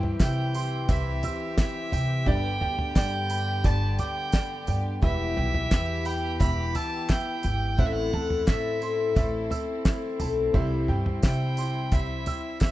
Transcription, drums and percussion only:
0.03 floor tom
0.20 kick, snare, clap, tambourine
0.55 tambourine
0.89 kick, clap, floor tom, tambourine
1.23 floor tom, tambourine
1.57 kick, snare, clap, tambourine
1.92 floor tom, tambourine
2.26 kick, floor tom, tambourine
2.61 floor tom
2.79 floor tom
2.96 kick, snare, clap, tambourine
3.30 tambourine
3.64 kick, clap, floor tom, tambourine
3.99 floor tom, tambourine
4.32 kick, snare, clap, tambourine
4.67 floor tom, tambourine
5.02 kick, floor tom, tambourine
5.37 floor tom
5.54 floor tom
5.71 kick, snare, clap, tambourine
6.05 tambourine
6.40 kick, clap, floor tom, tambourine
6.75 floor tom, tambourine
7.09 kick, snare, clap, tambourine
7.43 floor tom, tambourine
7.78 kick, floor tom, tambourine
8.13 floor tom
8.30 floor tom
8.47 kick, snare, clap, tambourine
8.82 tambourine
9.16 kick, clap, floor tom, tambourine
9.51 floor tom, tambourine
9.85 kick, snare, clap, tambourine
10.20 floor tom, tambourine
10.54 kick, floor tom, tambourine
10.88 floor tom
11.06 floor tom
11.22 kick, snare, clap, tambourine
11.57 tambourine
11.92 kick, clap, floor tom, tambourine
12.26 floor tom, tambourine
12.60 kick, snare, clap, tambourine

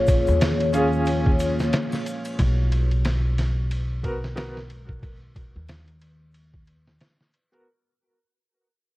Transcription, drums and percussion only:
0.07 kick, ride, shaker
0.27 shaker
0.41 snare, ride, shaker
0.60 ride
0.73 ride, shaker
0.93 shaker
1.06 ride, shaker
1.26 kick
1.39 ride, shaker
1.59 snare, shaker
1.73 snare, ride, shaker
1.92 snare, triangle
2.06 ride, shaker
2.25 ride, triangle, shaker
2.39 kick, ride
2.72 ride
2.91 ride
3.05 snare, ride
3.38 snare, ride
3.71 ride
4.04 kick, ride
4.24 snare
4.37 snare, ride
4.57 snare
4.70 ride
4.89 kick
5.03 kick, ride
5.36 kick, ride
5.68 snare, ride
5.88 ride
6.02 ride
6.34 ride
6.54 kick
6.67 ride
6.88 snare
7.01 snare, ride
7.21 snare
7.34 ride
7.53 ride

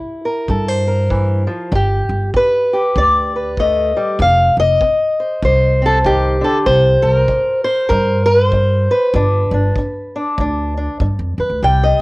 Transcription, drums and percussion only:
0.48 kick
1.10 kick
1.72 kick
2.34 kick
2.96 kick
3.57 kick
4.19 kick
4.81 kick
5.43 kick
6.05 kick
6.66 kick
7.28 kick
7.90 kick
8.52 kick
9.14 kick
9.76 kick
10.38 kick
11.00 kick

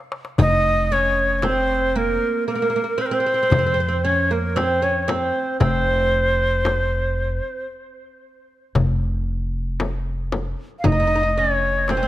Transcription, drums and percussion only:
0.12 darbuka tek
0.25 darbuka ka
0.38 darbuka dum, frame drum
1.42 darbuka tek, frame drum
1.95 darbuka ka
3.51 darbuka dum, frame drum
4.57 darbuka tek, frame drum
5.08 darbuka tek, frame drum
5.61 frame drum, darbuka dum
6.65 darbuka tek, frame drum
7.18 darbuka ka
8.75 frame drum, darbuka dum
9.80 darbuka tek, frame drum
10.32 darbuka tek, frame drum
10.84 frame drum, darbuka dum
11.37 darbuka ka
11.88 darbuka tek, frame drum

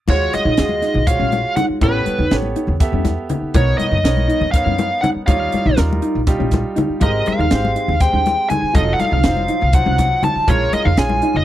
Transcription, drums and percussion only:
0.08 kick, crash, muted conga, low conga
0.21 low conga
0.33 snare, closed hi-hat, high conga
0.57 snare, closed hi-hat
0.69 muted conga, high conga, low conga
0.82 snare, closed hi-hat, low conga
0.94 low conga
1.07 kick, closed hi-hat
1.20 high conga
1.32 closed hi-hat, muted conga, low conga
1.56 snare, closed hi-hat, high conga, low conga
1.81 kick, closed hi-hat, muted conga, low conga
1.94 low conga
2.06 closed hi-hat, high conga
2.18 low conga
2.31 snare, closed hi-hat
2.42 muted conga, low conga
2.55 closed hi-hat, low conga
2.67 low conga
2.80 kick, snare, closed hi-hat
2.92 high conga
3.05 kick, snare, closed hi-hat, muted conga, low conga
3.29 closed hi-hat, low conga
3.54 kick, closed hi-hat, muted conga, low conga
3.79 closed hi-hat, high conga
3.92 low conga
4.05 snare, closed hi-hat
4.17 muted conga, high conga, low conga
4.29 closed hi-hat, low conga
4.41 low conga
4.54 kick, snare, closed hi-hat
4.66 high conga
4.78 closed hi-hat, muted conga, low conga
5.03 closed hi-hat, high conga, low conga
5.28 kick, closed hi-hat, muted conga
5.52 closed hi-hat, high conga
5.68 low conga
5.77 snare, closed hi-hat
5.93 muted conga, high conga, low conga
6.02 closed hi-hat
6.27 kick, snare, closed hi-hat
6.42 high conga, low conga
6.51 kick, snare, closed hi-hat, muted conga
6.76 closed hi-hat, high conga, low conga
6.90 low conga
7.01 kick, closed hi-hat, muted conga, low conga
7.16 low conga
7.26 closed hi-hat, high conga
7.41 low conga
7.51 snare, closed hi-hat
7.65 muted conga, high conga, low conga
7.76 closed hi-hat
7.89 low conga
8.00 kick, snare, closed hi-hat
8.15 high conga
8.26 snare, closed hi-hat, muted conga, low conga
8.50 closed hi-hat, high conga, low conga
8.75 kick, closed hi-hat, muted conga, low conga
9.00 snare, closed hi-hat, high conga
9.13 low conga
9.23 snare, closed hi-hat
9.37 muted conga, high conga, low conga
9.48 closed hi-hat, low conga
9.62 low conga
9.73 kick, closed hi-hat
9.86 high conga
9.98 kick, snare, closed hi-hat, muted conga, low conga
10.23 closed hi-hat, high conga, low conga
10.48 kick, closed hi-hat, muted conga, low conga
10.62 low conga
10.73 closed hi-hat, high conga
10.85 low conga
10.97 snare, closed hi-hat
11.09 muted conga, high conga, low conga
11.22 closed hi-hat, low conga
11.36 low conga

